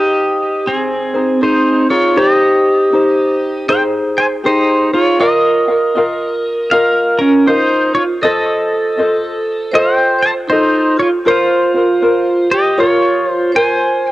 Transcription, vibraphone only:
Already playing: G4
0.66 C4
1.41 D#4
1.89 F4
2.16 G4
3.68 C5
4.17 C5
4.44 D#4
4.94 F4
5.20 A#4
6.72 A#4
7.19 C#4
7.46 D#4
7.94 F4
8.22 A4
9.71 C5
10.19 C5
10.48 D#4
10.97 F4
11.25 F4
12.50 G4
12.77 F4
13.52 C5

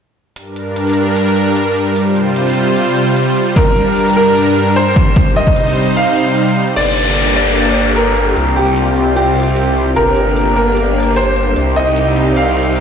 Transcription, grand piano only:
3.56 A#4
4.16 A#4
4.76 C5
5.36 D#5
5.96 F5
6.76 D5
7.36 D5
7.96 A#4
8.56 G4
9.16 G4
9.96 A#4
10.56 A#4
11.16 C5
11.76 D#5
12.36 F5

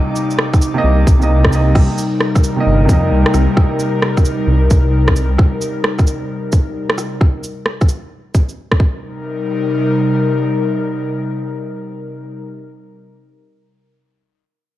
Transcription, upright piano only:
Already playing: C3 A#3 D#5
0.74 C3 A#3
0.78 D#5
1.19 C3 A#3
1.23 D#5
1.50 C3 A#3
1.54 D#5
2.56 C3 A#3
2.60 D#5
2.85 C3
2.89 A#3 D#5

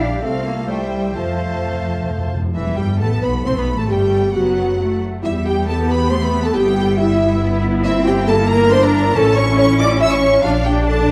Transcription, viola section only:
Already playing: G4
0.24 A4
0.70 C5
1.16 C5
2.55 E3
2.79 G3
3.01 A3
3.24 B3
3.46 C4
3.58 B3
3.79 A3
3.90 G3
4.36 F#3
5.23 B3 G4
6.55 E4
7.84 A#3
9.16 C#4 E4
10.44 D4

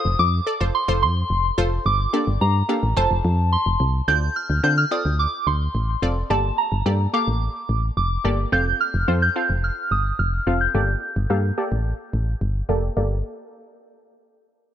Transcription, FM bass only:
0.05 F1
0.19 F2
0.61 F1
0.89 F1
1.02 F2
1.30 F1
1.58 F1
1.86 G1
2.27 G1
2.41 G2
2.83 A1
2.97 F1
3.11 F1
3.25 F2
3.66 F1
3.80 C2
4.08 D2
4.50 D2
4.64 D3
5.05 D2
5.47 D2
5.75 A1
6.02 F1
6.30 G1
6.72 G1
6.86 G2
7.28 A1
7.69 A1
7.97 F1
8.25 G1
8.53 F1
8.94 F1
9.08 F2
9.50 F1
9.91 G1
10.19 F1
10.47 F1
10.75 G1
11.16 G1
11.30 G2
11.72 A1
12.13 A1
12.41 G1
12.69 F1
12.97 G1

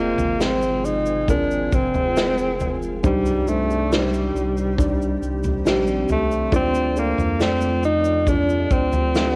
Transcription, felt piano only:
Already playing: C3 C4 F4 G#4 C5 D#5
0.40 C4 F4 G#4 C5
1.28 C4 F4 G#4 A#4
2.16 C4 F4 G#4 C5
3.03 G2 D4 D#4 G4 C5
3.48 D4 D#4 G4 C5
3.92 D4 D#4 G4 C5
4.78 D4 D#4 G4 D5
5.65 D4 D#4 G4 C5
6.52 D4 F4 A4 D5
6.96 D4 F4 A4 D5
7.40 A3 F4 A4 D5
8.27 D4 F4 A4 D5
9.15 D4 F4 A4 F5

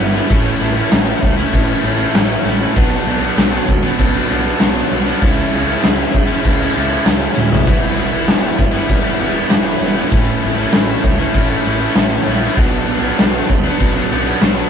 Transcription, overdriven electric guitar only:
0.01 E3 G3 B3 E4
0.17 G3 B3 E4
0.30 A2 E3 A3 C#4 E4
0.61 E3 A3 C#4 E4
0.77 A3 C#4 E4
0.91 A2 E3 A3 C#4 E4
1.23 E3 A3 C#4 E4
1.37 A3 C#4 E4
1.83 E3 A3 C#4 E4
1.99 A3 C#4 E4
2.13 A2 E3 A3 C#4 E4
2.44 E3 A3 C#4 E4
2.60 A3 C#4 E4
2.76 B2 F#3 B3 D4
3.07 B2 F#3 B3 D4
3.22 F#3 B3 D4
3.37 B2 F#3 B3 D4
3.68 B2 F#3 B3 D4
3.83 F#3 B3 D4
4.29 B2 F#3 B3 D4
4.45 F#3 B3 D4
4.61 B2 F#3 B3 D4
4.92 B2 F#3 B3 D4
5.08 F#3 B3 D4
5.24 C#3 G#3 C#4 E4
5.54 C#3 G#3 C#4 E4
5.69 G#3 C#4 E4
5.84 C#3 G#3 C#4 E4
6.15 C#3 G#3 C#4 E4
6.30 G#3 C#4 E4
6.77 C#3 G#3 C#4 E4
6.92 G#3 C#4 E4
7.07 C#3 G#3 C#4 E4
7.37 C#3 G#3 C#4 E4
7.52 G#3 C#4 E4
7.67 E3 G3 B3 E4
7.98 E3 G3 B3 E4
8.13 G3 B3 E4
8.28 E3 G3 B3 E4
8.59 E3 G3 B3 E4
8.74 G3 B3 E4
9.20 E3 G3 B3 E4
9.35 G3 B3 E4
9.50 E3 G3 B3 E4
9.82 E3 G3 B3 E4
9.96 G3 B3 E4
10.11 A2 E3 A3 C#4 E4
10.42 E3 A3 C#4 E4
10.58 A3 C#4 E4
10.73 A2 E3 A3 C#4 E4
11.04 E3 A3 C#4 E4
11.20 A3 C#4 E4
11.65 E3 A3 C#4 E4
11.81 A3 C#4 E4
11.96 A2 E3 A3 C#4 E4
12.26 E3 A3 C#4 E4
12.41 A3 C#4 E4
12.55 B2 F#3 B3 D4
12.86 B2 F#3 B3 D4
13.02 F#3 B3 D4
13.16 B2 F#3 B3 D4
13.49 B2 F#3 B3 D4
13.64 F#3 B3 D4
14.11 B2 F#3 B3 D4
14.27 F#3 B3 D4
14.42 B2 F#3 B3 D4

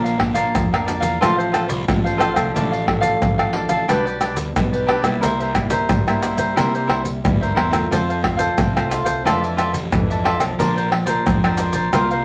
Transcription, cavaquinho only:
0.04 A#4 D5 F5
0.18 muted cavaquinho stroke
0.34 A#4 D5 F5
0.72 A#4 D5 F5
0.86 D4 A#4 D5 F5
1.00 A#4 D5 F5
1.21 F4 A4 C5 F5
1.37 A4 C5 F5
1.52 F4 A4 C5 F5
1.67 muted cavaquinho stroke
2.04 A4 C5 F5
2.17 F4 A4 C5 F5
2.34 A4 C5 F5
2.54 D4 A4 D5 F5
2.72 A4 D5 F5
2.86 muted cavaquinho stroke
3.01 A4 D5 F5
3.38 A4 D5 F5
3.53 D4 A4 D5 F5
3.69 A4 D5 F5
3.88 D4 G4 B4 D5
4.05 G4 B4 D5
4.20 D4 G4 B4 D5
4.36 muted cavaquinho stroke
4.72 G4 B4 D5
4.87 D4 G4 B4 D5
5.02 G4 B4 D5
5.21 E4 A#4 C5 E5
5.40 A#4 C5 E5
5.56 muted cavaquinho stroke
5.70 A#4 C5 E5
6.07 A#4 C5 E5
6.21 E4 A#4 C5 E5
6.37 A#4 C5 E5
6.56 E4 A#4 C5 E5
6.74 A#4 C5 E5
6.87 E4 A#4 C5 E5
7.04 muted cavaquinho stroke
7.41 A#4 C5 E5
7.55 E4 A#4 C5 E5
7.71 A#4 C5 E5
7.91 F4 A4 C5 F5
8.09 A4 C5 F5
8.22 muted cavaquinho stroke
8.37 A4 C5 F5
8.76 A4 C5 F5
8.89 F4 A4 C5 F5
9.04 A4 C5 F5
9.25 F4 A4 D5 E5
9.42 A4 D5 E5
9.57 F4 A4 D5 E5
9.73 muted cavaquinho stroke
10.10 A4 D5 E5
10.24 F4 A4 D5 E5
10.39 A4 D5 E5
10.59 D4 A#4 C5 D5
10.76 A#4 C5 D5
10.91 muted cavaquinho stroke
11.06 A#4 C5 D5
11.44 A#4 C5 D5
11.57 D4 A#4 C5 D5
11.73 A#4 C5 D5
11.93 F4 A#4 C5 F5
12.11 A#4 C5 F5

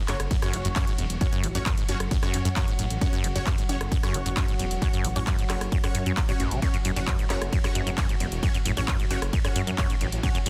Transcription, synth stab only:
0.08 C#4 F#4 C#5
0.42 C#4 F#4 C#5
0.76 C#4 F#4 C#5
1.21 C#4 F#4 C#5
1.55 C#4 F#4 C#5
1.89 C#4 F#4 C#5
2.23 C#4 F#4 C#5
2.56 C#4 F#4 C#5
3.02 C#4 F#4 C#5
3.35 C#4 F#4 C#5
3.69 C#4 F#4 C#5
4.03 C#4 F#4 C#5
4.37 C#4 F#4 C#5
4.82 C#4 F#4 C#5
5.16 C#4 F#4 C#5
5.50 C#4 F#4 C#5
5.84 C#4 F#4 C#5
6.29 C#4 F#4 C#5
6.62 C#4 F#4 C#5
6.96 C#4 F#4 C#5
7.30 C#4 F#4 C#5
7.64 C#4 F#4 C#5
7.98 C#4 F#4 C#5
8.43 C#4 F#4 C#5
8.77 C#4 F#4 C#5
9.11 C#4 F#4 C#5
9.45 C#4 F#4 C#5
9.78 C#4 F#4 C#5
10.23 C#4 F#4 C#5

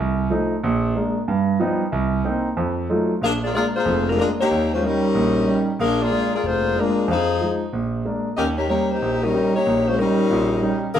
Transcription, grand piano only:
0.00 C2
0.30 F3 A3 D#4
0.64 A#1
0.95 G#3 A#3 D4
1.28 G2
1.60 F3 G3 B3 D#4
1.92 C2
2.25 A#3 C4 D#4
2.57 F2
2.89 F#3 A3 D#4 F4
3.21 A#1
3.52 G#3 A#3 D4
3.85 F1 F2
4.18 G#3 A#3 D4
4.51 D#2
4.83 G3 C#4 D#4
5.15 A#1
5.47 G3 C#4 D#4
5.79 A#1
6.11 G#3 A#3 D4
6.44 F1
6.75 G#3 A#3 D4
7.08 F2
7.41 F3 G#3 D#4
7.73 A#1
8.05 G#3 A#3 D4
8.38 D#2
8.69 G3 C#4 D#4
9.02 A#1
9.34 G3 C#4 D#4
9.66 A#1
9.98 G3 C#4 D#4
10.30 A#1 A#2
10.62 G3 C#4 D#4
10.96 A#1 D3

